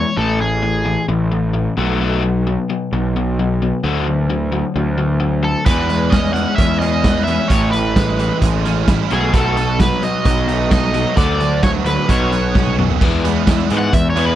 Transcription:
Already playing: E3 G#3 C#5
0.17 A1 A2 E3 A3 A4
0.41 A2 E3 G#4
0.62 A2 E3
0.85 A2 E3
1.08 A1 A2 E3
1.32 A2 E3
1.54 A2 E3
1.77 B1 B2 F#3 A3
2.00 B2 F#3 A3
2.23 B2 F#3
2.47 B2 F#3
2.70 B2 F#3
2.93 B1 B2 F#3
3.16 B2 F#3
3.39 B2 F#3
3.62 B2 F#3
3.83 D2 D3 F#3 A3
4.07 D3 F#3
4.30 D3 F#3
4.52 D3 F#3
4.76 D2 D3 F#3
4.98 D3 F#3
5.20 D3 F#3
5.43 D3 F#3 A4
5.66 E2 E3 G#3 B3 B4, kick, closed hi-hat
5.89 E3 G#3, closed hi-hat
6.10 E3 G#3 C#4 D#5, kick, snare, closed hi-hat
6.25 snare
6.34 E3 G#3 F#5, closed hi-hat
6.56 E2 E3 G#3 C#4 E5, kick, closed hi-hat
6.79 E3 G#3 G#4 D#5, closed hi-hat
7.04 E3 G#3 B4, kick, snare, closed hi-hat
7.24 E5, closed hi-hat
7.28 E3 G#3 C#4
7.48 A1 A2 E3 A3 C#5, kick, closed hi-hat
7.71 A2 E3 B4, closed hi-hat
7.96 A2 E3 G#3, kick, snare, closed hi-hat
8.19 A2 E3, closed hi-hat
8.42 A1 A2 E3 G#3, kick, closed hi-hat
8.65 A2 E3 C#4, snare, closed hi-hat
8.88 A2 E3 E4, kick, snare, closed hi-hat
9.11 B1 B2 F#3 A3 G#4, closed hi-hat
9.33 B2 F#3 A3 A4, kick, closed hi-hat
9.57 B2 F#3, closed hi-hat
9.79 B2 F#3 B4, kick, snare, closed hi-hat
10.02 B2 F#3 D#5, closed hi-hat
10.25 B1 B2 F#3, kick, closed hi-hat
10.48 B2 F#3 A3, closed hi-hat
10.70 B2 F#3 D#4 D#5, kick, snare, closed hi-hat
10.94 B2 F#3, closed hi-hat
11.17 D2 D3 F#3 A3 D5, kick, closed hi-hat
11.40 D3 F#3, closed hi-hat
11.63 D3 F#3 C#5, kick, snare, closed hi-hat
11.85 D3 F#3 B4, closed hi-hat
12.09 B1 B2 F#3 B3 C#5, kick, closed hi-hat
12.32 B2 F#3 B3, closed hi-hat
12.55 B2 F#3 C#4, kick, snare
12.67 high tom
12.79 B2 F#3, mid tom
12.90 floor tom
13.01 E2 E3 G#3 B3, kick, crash
13.24 E3 G#3 B3 E4, closed hi-hat
13.47 E2 E3 G#3 B3 E4, kick, snare, closed hi-hat
13.59 snare
13.70 G#2 E3 G#3 B3, closed hi-hat
13.78 F#5
13.93 E2 E3 G#3 E5, kick, closed hi-hat
14.10 C#5
14.16 E3 G#3 B3 E4, closed hi-hat
14.25 B4

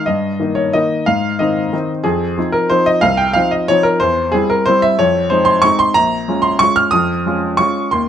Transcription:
0.06 G2 D#5
0.40 D#3 A#3 D#4
0.55 C#5
0.73 D#3 A#3 D#4 D#5
1.06 G#2 F5
1.39 D#3 C4 D#4 D#5
1.73 D#3 C4 D#4
2.04 F2 G#4
2.38 F3 C4 D#4
2.52 A#4
2.70 F3 C4 D#4 C5
2.86 D#5
3.01 C2 F5
3.17 G5
3.33 F3 C4 D#4 F5
3.51 D#5
3.68 F3 C4 D#4 C#5
3.83 A#4
4.00 E2 C5
4.32 G3 C4 E4 G#4
4.50 A#4
4.66 G3 C4 E4 C5
4.82 E5
4.99 F2 C#5
5.30 G#3 C4 D#4 C5
5.45 C6
5.62 G#3 C4 D#4 C#6
5.79 C6
5.94 A#1 A#5
6.28 G#3 C#4 F4
6.42 C6
6.59 G#3 C#4 F4 C#6
6.76 F6
6.91 F2 D#6
7.26 G#3 C#4 F4
7.57 G#3 C#4 F4 C#6
7.91 D#2 C6

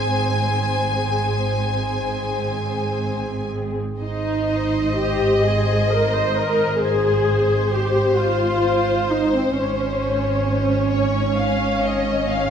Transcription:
Already playing: G#1 G#2 C4 G#4 C5 G#5
4.00 G#1 G#2 D#4 C5 D#5
4.96 G4
5.42 G#4 C5
5.89 A#4
6.13 C5
6.36 A#4
6.81 G#4 C5
7.72 G4
8.16 F4
9.09 D#4
9.34 C4
9.57 G#1 G#2 C#4 C#5
10.93 C#5
11.38 F5
11.84 D#5
12.28 F5

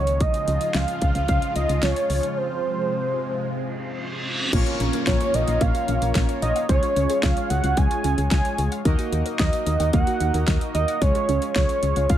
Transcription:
Already playing: C#2 C#3 F3 G#3 F4 C#5
0.07 closed hi-hat
0.20 D#5, kick, closed hi-hat
0.34 closed hi-hat
0.48 C#2, closed hi-hat
0.61 closed hi-hat
0.74 C#2 F5, snare, closed hi-hat
0.88 closed hi-hat
1.02 C#2, kick, closed hi-hat
1.15 C#2, closed hi-hat
1.28 C#2 F5, kick, closed hi-hat
1.42 closed hi-hat
1.56 C#2 D#5, closed hi-hat
1.69 C#2, closed hi-hat
1.83 C#2 C#5, snare, closed hi-hat
1.96 closed hi-hat
2.10 C#2, open hi-hat
2.23 closed hi-hat
2.37 C3 G#3 C5
3.45 reverse cymbal
4.53 A#1 A#3 C#4 F4 A#4 C#5, kick, closed hi-hat, crash, downlifter
4.66 F4, closed hi-hat
4.80 A#1 C#4, closed hi-hat
4.93 A#4, closed hi-hat
5.07 A#1 F4 C#5, kick, snare, closed hi-hat
5.21 C#5, closed hi-hat
5.34 A#1 A#4 D#5, closed hi-hat
5.48 A#1 F5, closed hi-hat
5.61 A#1 A#3 F5, kick, closed hi-hat
5.75 F4, closed hi-hat
5.88 A#1 C#4, closed hi-hat
6.02 A#1 A#4, closed hi-hat
6.15 A#1 F4, kick, snare, closed hi-hat
6.29 C#5, closed hi-hat
6.42 A#1 A#4 D#5, closed hi-hat
6.56 F5, closed hi-hat
6.69 C#2 G#3 C#4 F4 G#4 C#5, kick, closed hi-hat
6.83 F4, closed hi-hat
6.96 C#2 C#4, closed hi-hat
7.10 G#4, closed hi-hat
7.23 C#2 F4 F5, kick, snare, closed hi-hat
7.37 C#5, closed hi-hat
7.50 C#2 G#4 F#5, closed hi-hat
7.64 C#2 F5, closed hi-hat
7.77 C#2 G#3 G#5, kick, closed hi-hat
7.91 F4, closed hi-hat
8.04 C#2 C#4, closed hi-hat
8.18 C#2 G#4, closed hi-hat
8.31 C#2 F4 G#5, kick, snare, closed hi-hat
8.45 C#5, closed hi-hat
8.58 C#2 G#4, closed hi-hat
8.72 F5, closed hi-hat
8.85 D#2 A#3 D#4 F#4 A#4 D#5, kick, closed hi-hat
8.99 F#4, closed hi-hat
9.12 D#2 D#4, closed hi-hat
9.26 A#4, closed hi-hat
9.39 D#2 F#4 D#5, kick, snare, closed hi-hat
9.53 D#5, closed hi-hat
9.66 D#2 A#4, closed hi-hat
9.80 D#2 F#5, closed hi-hat
9.93 D#2 A#3 F#5, kick, closed hi-hat
10.07 F#4, closed hi-hat
10.20 D#2 D#4, closed hi-hat
10.34 D#2 A#4, closed hi-hat
10.47 D#2 F#4, kick, snare, closed hi-hat
10.61 D#5, closed hi-hat
10.75 D#2 A#4 D#5, closed hi-hat
10.88 F#5, closed hi-hat
11.02 C#2 G#3 C#4 F4 G#4 C#5, kick, closed hi-hat
11.15 F4, closed hi-hat
11.29 C#2 C#4, closed hi-hat
11.42 G#4, closed hi-hat
11.56 C#2 F4 C#5, kick, snare, closed hi-hat
11.69 C#5, closed hi-hat
11.83 C#2 G#4, closed hi-hat
11.96 C#2 F5, closed hi-hat
12.10 C#2 G#3 F5, kick, closed hi-hat

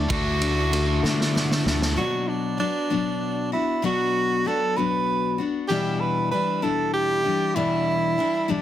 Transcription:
Already playing: D4 F#4
0.09 D2 D3 A3 D4 F#4, kick, ride
0.39 A3 D4 F#4, ride
0.70 D3 A3 D4 F#4, ride
1.03 D3 A3 D4 F#4, snare
1.21 snare
1.34 D3 A3 D4 F#4, snare
1.51 snare
1.64 D2 A3 D4 F#4, snare
1.82 snare
1.96 B2 F#3 B3 D4 F#4
2.28 D4
2.58 F#3 B3 D4 F#4
2.90 B2 F#3 B3 D4 F#4
3.52 B3 D4 E4 F#4
3.82 B2 F#3 B3 D4 F#4
4.45 F#3 B3 D4 F#4 A4
4.77 B2 F#3 B3 D4 F#4 B4
5.38 B3 D4 F#4
5.68 E2 B2 E3 G3 D4 E4 G4
6.00 B4
6.31 E3 G3 D4 E4 B4
6.62 E2 B2 E3 G3 D4 E4 A4
6.94 G4
7.23 E3 G3 D4 E4
7.55 E2 B2 E3 G3 D4 E4
8.18 E3 G3 D4 E4
8.48 E2 B2 E3 G3 D4 E4

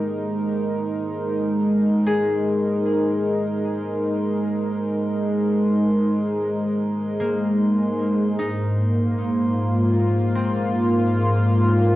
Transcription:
Already playing: G#3 D#4 G4 A#4 C5 C6
2.07 G#4
7.20 A#3
8.37 G#2 D#4 C5 C6
8.75 A#3
9.48 F4
10.35 C4

